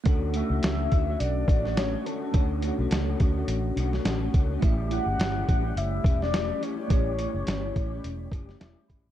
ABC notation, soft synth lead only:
X:1
M:4/4
L:1/16
Q:"Swing 16ths" 1/4=105
K:D
V:1 name="Soft synth lead"
z2 e6 d4 c2 A2- | A4 z12 | z2 f6 e3 d3 c2- | c12- c2 z2 |]